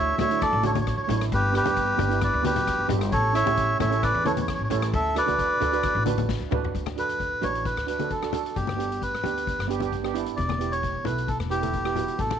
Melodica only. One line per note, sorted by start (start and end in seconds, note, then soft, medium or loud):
0.00 0.16 C#5 medium
0.00 0.19 E5 loud
0.20 0.41 C#5 medium
0.20 0.43 E5 loud
0.41 0.63 A4 medium
0.41 0.65 D5 loud
0.66 0.73 A4 medium
0.66 0.72 C#5 medium
0.73 0.79 C#5 medium
0.81 0.86 C#5 medium
0.88 0.95 C#5 medium
0.97 1.02 C#5 medium
1.03 1.09 C#5 medium
1.11 1.15 C#5 medium
1.17 1.25 C#5 medium
1.33 1.54 G4 medium
1.33 1.55 B4 medium
1.56 2.19 G4 medium
1.56 2.22 B4 medium
2.24 2.44 B4 medium
2.24 2.44 D5 medium
2.46 2.87 G4 medium
2.46 2.88 B4 medium
3.12 3.34 A4 medium
3.12 3.35 C#5 medium
3.35 3.78 C#5 medium
3.35 3.77 E5 loud
3.81 4.02 C#5 medium
3.81 4.04 E5 medium
4.03 4.24 B4 medium
4.03 4.27 D5 loud
4.26 4.33 A4 medium
4.26 4.32 C#5 medium
4.34 4.40 C#5 medium
4.41 4.47 C#5 medium
4.49 4.53 C#5 medium
4.55 4.63 C#5 medium
4.64 4.69 C#5 medium
4.70 4.78 C#5 medium
4.79 4.87 C#5 medium
4.95 5.15 A4 medium
4.95 5.18 E5 medium
5.17 6.03 B4 medium
5.17 6.03 D5 medium
6.99 7.45 B4 medium
7.43 7.66 C#5 medium
7.66 7.87 B4 medium
7.89 8.12 B4 medium
8.11 8.32 A4 medium
8.34 8.57 A4 medium
8.55 9.02 G4 medium
9.02 9.66 B4 medium
10.36 10.72 D5 medium
10.72 11.06 C#5 medium
11.06 11.29 B4 medium
11.28 11.38 A4 medium
11.50 12.21 G4 medium
12.19 12.39 A4 medium